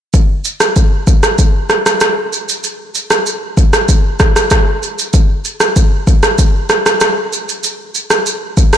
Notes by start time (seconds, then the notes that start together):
0.14 kick, shaker
0.45 shaker
0.60 cross-stick, shaker
0.76 kick, shaker
1.07 kick, shaker
1.23 cross-stick, shaker
1.39 kick, shaker
1.70 cross-stick, shaker
1.86 cross-stick, shaker
2.01 cross-stick, shaker
2.33 shaker
2.49 shaker
2.64 shaker
2.95 shaker
3.11 cross-stick, shaker
3.27 shaker
3.57 kick, shaker
3.73 cross-stick, shaker
3.89 kick, shaker
4.20 kick, cross-stick, shaker
4.36 cross-stick, shaker
4.51 kick, cross-stick, shaker
4.83 shaker
4.99 shaker
5.14 kick, shaker
5.45 shaker
5.60 cross-stick, shaker
5.76 kick, shaker
6.07 kick, shaker
6.23 cross-stick, shaker
6.39 kick, shaker
6.70 cross-stick, shaker
6.86 cross-stick, shaker
7.01 cross-stick, shaker
7.33 shaker
7.49 shaker
7.64 shaker
7.95 shaker
8.10 cross-stick, shaker
8.26 shaker
8.57 kick, shaker
8.73 cross-stick, shaker